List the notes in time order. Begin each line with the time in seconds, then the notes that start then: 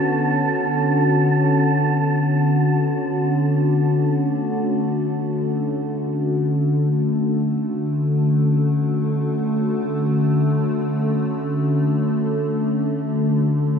Already playing: D3 B3 C#4 F#4 A4 A5
2.96 A3